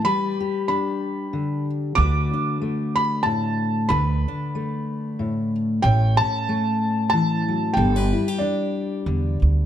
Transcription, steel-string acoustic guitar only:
0.05 G3 B4
0.40 G4
0.69 D4
1.33 D3
1.96 D3 A3 D4 F#4 B4
2.33 D4
2.62 A3
3.25 A2
3.90 D3 B4
4.28 D4
4.55 A3
5.19 A2
5.84 A2 C#5
6.21 C#4
6.49 A3
7.13 E3
7.48 F#3
7.77 G3 A4
7.96 B4
8.13 E4
8.28 G4
8.41 D4
9.07 D3

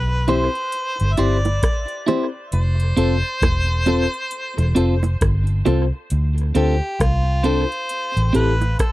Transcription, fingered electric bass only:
Already playing: B1
1.01 G1
1.19 G1
2.53 F1
2.97 F1
3.42 E1
4.58 E1
4.77 F1
5.21 G1
5.66 C2
6.12 D2
6.56 D2
7.00 C2
8.17 A1
8.35 A1

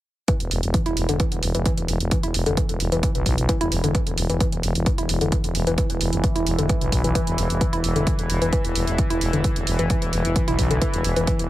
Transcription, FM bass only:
0.40 E1
0.51 E1
0.63 E1
0.86 E1
0.97 E1
1.09 E1
1.32 E1
1.43 E1
1.55 E1
1.78 E1
1.89 E1
2.00 E1
2.23 E1
2.34 E1
2.46 F1
2.69 E1
2.80 E1
2.92 E1
3.15 B1
3.26 B1
3.38 B1
3.61 E1
3.72 E1
3.84 E1
4.07 E1
4.18 E1
4.30 E1
4.52 E1
4.63 E1
4.75 E1
4.98 E1
5.09 E1
5.21 E1
5.44 E1
5.55 E1
5.67 E1
5.90 E1
6.01 E1
6.13 F1
6.36 E1
6.47 E1
6.58 E1
6.81 B1
6.92 B1
7.04 B1
7.27 E1
7.38 E1
7.50 E1
7.73 E1
7.84 E1
7.96 E1
8.19 E1
8.30 E1
8.42 E1
8.64 E1
8.75 E1
8.87 E1
9.10 E1
9.21 E1
9.33 E1
9.56 E1
9.67 E1
9.79 F1
10.02 E1
10.13 E1
10.25 E1
10.48 B1
10.59 B1
10.71 B1
10.94 E1
11.04 E1
11.16 E1
11.39 E1

